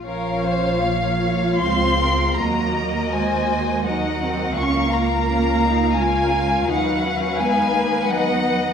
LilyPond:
<<
  \new Staff \with { instrumentName = "Violin section" } { \time 3/4 \key bes \minor \tempo 4 = 85 f''2 c'''4 | bes''4 aes''4 ges''4 | des'''8 bes''4. aes''4 | fis''4 aes''4 fis''4 | }
  \new Staff \with { instrumentName = "Violin section" } { \time 3/4 \key bes \minor << { des''4 f''2 | ees''2 ees''4 | f''4 f''4 f''4~ | f''2 dis''8 dis''8 | } \\ { bes'8 c''8 des''8 des''8 c''8 bes'8 | bes'4 c''4 bes'4 | bes'2 bes'4 | b'2. | } >> }
  \new Staff \with { instrumentName = "Viola section" } { \time 3/4 \key bes \minor << { f'2. | ges'2 ges'4 | f'4 f'4 des'4 | fis'4 dis'4 dis'4 | } \\ { des'4 bes4 aes4 | ges8 bes4. ees'8 c'8 | bes4 des'8 ees'8 f'8 f'8 | dis'8 des'8 b8 bes8 b4 | } >> }
  \new Staff \with { instrumentName = "Cello section" } { \clef bass \time 3/4 \key bes \minor f2 c'4 | bes4 aes4 ges4 | des'8 bes4. aes4 | fis4 aes4 fis4 | }
  \new Staff \with { instrumentName = "Double bass section" } { \clef bass \time 3/4 \key bes \minor bes,,2 des,4 | ees,2. | des,2. | dis,2. | }
>>